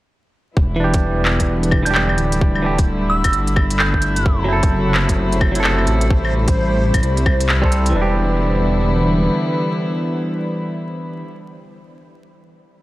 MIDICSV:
0, 0, Header, 1, 7, 480
1, 0, Start_track
1, 0, Key_signature, 1, "minor"
1, 0, Tempo, 461538
1, 588, Time_signature, 4, 2, 24, 8
1, 13338, End_track
2, 0, Start_track
2, 0, Title_t, "Synth bell"
2, 0, Program_c, 0, 98
2, 1928, Note_on_c, 0, 91, 82
2, 1990, Note_off_c, 0, 91, 0
2, 2020, Note_on_c, 0, 91, 72
2, 2120, Note_off_c, 0, 91, 0
2, 3220, Note_on_c, 0, 88, 85
2, 3479, Note_off_c, 0, 88, 0
2, 3945, Note_on_c, 0, 91, 88
2, 4486, Note_off_c, 0, 91, 0
2, 13338, End_track
3, 0, Start_track
3, 0, Title_t, "Synth texture"
3, 0, Program_c, 1, 99
3, 4425, Note_on_c, 1, 72, 79
3, 8278, Note_off_c, 1, 72, 0
3, 13338, End_track
4, 0, Start_track
4, 0, Title_t, "Clean electric guitar"
4, 0, Program_c, 2, 27
4, 790, Note_on_c, 2, 52, 79
4, 833, Note_on_c, 2, 62, 71
4, 875, Note_on_c, 2, 67, 86
4, 1883, Note_off_c, 2, 52, 0
4, 1903, Note_on_c, 2, 52, 90
4, 1904, Note_off_c, 2, 62, 0
4, 1925, Note_off_c, 2, 67, 0
4, 1941, Note_on_c, 2, 62, 81
4, 1983, Note_on_c, 2, 67, 95
4, 2709, Note_off_c, 2, 52, 0
4, 2727, Note_on_c, 2, 52, 83
4, 2728, Note_off_c, 2, 62, 0
4, 2749, Note_off_c, 2, 67, 0
4, 2749, Note_on_c, 2, 62, 74
4, 2768, Note_on_c, 2, 67, 92
4, 2876, Note_off_c, 2, 52, 0
4, 2886, Note_off_c, 2, 62, 0
4, 2896, Note_off_c, 2, 67, 0
4, 4621, Note_on_c, 2, 54, 81
4, 4665, Note_on_c, 2, 64, 74
4, 4706, Note_on_c, 2, 69, 89
4, 5718, Note_off_c, 2, 54, 0
4, 5740, Note_off_c, 2, 64, 0
4, 5740, Note_on_c, 2, 54, 94
4, 5760, Note_off_c, 2, 69, 0
4, 5781, Note_on_c, 2, 64, 84
4, 5823, Note_on_c, 2, 69, 102
4, 6318, Note_off_c, 2, 54, 0
4, 6338, Note_off_c, 2, 64, 0
4, 6359, Note_off_c, 2, 69, 0
4, 7922, Note_on_c, 2, 55, 81
4, 7940, Note_on_c, 2, 60, 74
4, 7961, Note_on_c, 2, 69, 90
4, 8212, Note_on_c, 2, 52, 82
4, 8249, Note_off_c, 2, 55, 0
4, 8258, Note_off_c, 2, 60, 0
4, 8268, Note_off_c, 2, 69, 0
4, 8275, Note_on_c, 2, 62, 75
4, 8336, Note_on_c, 2, 67, 93
4, 11668, Note_off_c, 2, 52, 0
4, 11731, Note_off_c, 2, 62, 0
4, 11793, Note_off_c, 2, 67, 0
4, 13338, End_track
5, 0, Start_track
5, 0, Title_t, "String section"
5, 0, Program_c, 3, 48
5, 588, Note_on_c, 3, 55, 71
5, 588, Note_on_c, 3, 64, 86
5, 590, Note_on_c, 3, 59, 70
5, 592, Note_on_c, 3, 50, 77
5, 2490, Note_off_c, 3, 59, 0
5, 2510, Note_on_c, 3, 57, 74
5, 4389, Note_off_c, 3, 55, 0
5, 4391, Note_off_c, 3, 50, 0
5, 4434, Note_on_c, 3, 54, 73
5, 4438, Note_on_c, 3, 48, 78
5, 6332, Note_off_c, 3, 54, 0
5, 6355, Note_on_c, 3, 55, 74
5, 8226, Note_off_c, 3, 64, 0
5, 8227, Note_off_c, 3, 57, 0
5, 8234, Note_off_c, 3, 48, 0
5, 8252, Note_off_c, 3, 55, 0
5, 8271, Note_on_c, 3, 50, 79
5, 8271, Note_on_c, 3, 64, 86
5, 8274, Note_on_c, 3, 55, 76
5, 8275, Note_on_c, 3, 59, 75
5, 11728, Note_off_c, 3, 50, 0
5, 11728, Note_off_c, 3, 64, 0
5, 11730, Note_off_c, 3, 55, 0
5, 11731, Note_off_c, 3, 59, 0
5, 13338, End_track
6, 0, Start_track
6, 0, Title_t, "Detuned saw bass"
6, 0, Program_c, 4, 39
6, 592, Note_on_c, 4, 28, 95
6, 1440, Note_off_c, 4, 28, 0
6, 1457, Note_on_c, 4, 28, 101
6, 2255, Note_off_c, 4, 28, 0
6, 2261, Note_on_c, 4, 26, 98
6, 3355, Note_off_c, 4, 26, 0
6, 3377, Note_on_c, 4, 28, 101
6, 3460, Note_off_c, 4, 28, 0
6, 3465, Note_on_c, 4, 31, 85
6, 4415, Note_off_c, 4, 31, 0
6, 4426, Note_on_c, 4, 30, 95
6, 5277, Note_off_c, 4, 30, 0
6, 5295, Note_on_c, 4, 30, 101
6, 6095, Note_off_c, 4, 30, 0
6, 6108, Note_on_c, 4, 33, 100
6, 7198, Note_off_c, 4, 33, 0
6, 7220, Note_on_c, 4, 33, 100
6, 7302, Note_off_c, 4, 33, 0
6, 7313, Note_on_c, 4, 36, 86
6, 8256, Note_off_c, 4, 36, 0
6, 8262, Note_on_c, 4, 28, 94
6, 9663, Note_off_c, 4, 28, 0
6, 13338, End_track
7, 0, Start_track
7, 0, Title_t, "Drums"
7, 589, Note_on_c, 9, 36, 111
7, 693, Note_off_c, 9, 36, 0
7, 973, Note_on_c, 9, 42, 55
7, 979, Note_on_c, 9, 36, 99
7, 1077, Note_off_c, 9, 42, 0
7, 1083, Note_off_c, 9, 36, 0
7, 1303, Note_on_c, 9, 39, 97
7, 1407, Note_off_c, 9, 39, 0
7, 1455, Note_on_c, 9, 42, 54
7, 1459, Note_on_c, 9, 36, 57
7, 1559, Note_off_c, 9, 42, 0
7, 1563, Note_off_c, 9, 36, 0
7, 1698, Note_on_c, 9, 42, 30
7, 1783, Note_on_c, 9, 75, 62
7, 1790, Note_on_c, 9, 36, 100
7, 1802, Note_off_c, 9, 42, 0
7, 1887, Note_off_c, 9, 75, 0
7, 1894, Note_off_c, 9, 36, 0
7, 1936, Note_on_c, 9, 42, 55
7, 2026, Note_on_c, 9, 39, 100
7, 2040, Note_off_c, 9, 42, 0
7, 2130, Note_off_c, 9, 39, 0
7, 2177, Note_on_c, 9, 75, 37
7, 2266, Note_on_c, 9, 42, 43
7, 2281, Note_off_c, 9, 75, 0
7, 2370, Note_off_c, 9, 42, 0
7, 2415, Note_on_c, 9, 42, 54
7, 2510, Note_on_c, 9, 36, 115
7, 2519, Note_off_c, 9, 42, 0
7, 2614, Note_off_c, 9, 36, 0
7, 2657, Note_on_c, 9, 75, 34
7, 2761, Note_off_c, 9, 75, 0
7, 2896, Note_on_c, 9, 42, 54
7, 2899, Note_on_c, 9, 36, 102
7, 3000, Note_off_c, 9, 42, 0
7, 3003, Note_off_c, 9, 36, 0
7, 3372, Note_on_c, 9, 42, 56
7, 3372, Note_on_c, 9, 75, 58
7, 3379, Note_on_c, 9, 36, 59
7, 3464, Note_off_c, 9, 42, 0
7, 3464, Note_on_c, 9, 42, 32
7, 3476, Note_off_c, 9, 75, 0
7, 3483, Note_off_c, 9, 36, 0
7, 3568, Note_off_c, 9, 42, 0
7, 3613, Note_on_c, 9, 42, 31
7, 3705, Note_on_c, 9, 75, 61
7, 3709, Note_on_c, 9, 36, 102
7, 3717, Note_off_c, 9, 42, 0
7, 3809, Note_off_c, 9, 75, 0
7, 3813, Note_off_c, 9, 36, 0
7, 3853, Note_on_c, 9, 42, 55
7, 3943, Note_on_c, 9, 39, 106
7, 3957, Note_off_c, 9, 42, 0
7, 4047, Note_off_c, 9, 39, 0
7, 4098, Note_on_c, 9, 36, 60
7, 4178, Note_on_c, 9, 42, 45
7, 4202, Note_off_c, 9, 36, 0
7, 4282, Note_off_c, 9, 42, 0
7, 4330, Note_on_c, 9, 42, 57
7, 4427, Note_on_c, 9, 36, 116
7, 4434, Note_off_c, 9, 42, 0
7, 4531, Note_off_c, 9, 36, 0
7, 4814, Note_on_c, 9, 42, 56
7, 4817, Note_on_c, 9, 36, 105
7, 4918, Note_off_c, 9, 42, 0
7, 4921, Note_off_c, 9, 36, 0
7, 5142, Note_on_c, 9, 39, 104
7, 5246, Note_off_c, 9, 39, 0
7, 5295, Note_on_c, 9, 42, 54
7, 5297, Note_on_c, 9, 36, 61
7, 5399, Note_off_c, 9, 42, 0
7, 5401, Note_off_c, 9, 36, 0
7, 5538, Note_on_c, 9, 42, 31
7, 5626, Note_on_c, 9, 75, 60
7, 5628, Note_on_c, 9, 36, 105
7, 5642, Note_off_c, 9, 42, 0
7, 5730, Note_off_c, 9, 75, 0
7, 5732, Note_off_c, 9, 36, 0
7, 5774, Note_on_c, 9, 42, 56
7, 5865, Note_on_c, 9, 39, 108
7, 5878, Note_off_c, 9, 42, 0
7, 5969, Note_off_c, 9, 39, 0
7, 6017, Note_on_c, 9, 75, 35
7, 6105, Note_on_c, 9, 42, 43
7, 6121, Note_off_c, 9, 75, 0
7, 6209, Note_off_c, 9, 42, 0
7, 6253, Note_on_c, 9, 42, 55
7, 6348, Note_on_c, 9, 36, 118
7, 6357, Note_off_c, 9, 42, 0
7, 6452, Note_off_c, 9, 36, 0
7, 6496, Note_on_c, 9, 75, 32
7, 6600, Note_off_c, 9, 75, 0
7, 6736, Note_on_c, 9, 42, 53
7, 6739, Note_on_c, 9, 36, 106
7, 6840, Note_off_c, 9, 42, 0
7, 6843, Note_off_c, 9, 36, 0
7, 7219, Note_on_c, 9, 42, 53
7, 7219, Note_on_c, 9, 75, 56
7, 7221, Note_on_c, 9, 36, 61
7, 7312, Note_off_c, 9, 42, 0
7, 7312, Note_on_c, 9, 42, 30
7, 7323, Note_off_c, 9, 75, 0
7, 7325, Note_off_c, 9, 36, 0
7, 7416, Note_off_c, 9, 42, 0
7, 7460, Note_on_c, 9, 42, 30
7, 7550, Note_on_c, 9, 75, 60
7, 7552, Note_on_c, 9, 36, 106
7, 7564, Note_off_c, 9, 42, 0
7, 7654, Note_off_c, 9, 75, 0
7, 7656, Note_off_c, 9, 36, 0
7, 7701, Note_on_c, 9, 42, 54
7, 7789, Note_on_c, 9, 39, 106
7, 7805, Note_off_c, 9, 42, 0
7, 7893, Note_off_c, 9, 39, 0
7, 7942, Note_on_c, 9, 36, 61
7, 8027, Note_on_c, 9, 42, 42
7, 8046, Note_off_c, 9, 36, 0
7, 8131, Note_off_c, 9, 42, 0
7, 8174, Note_on_c, 9, 42, 52
7, 8278, Note_off_c, 9, 42, 0
7, 13338, End_track
0, 0, End_of_file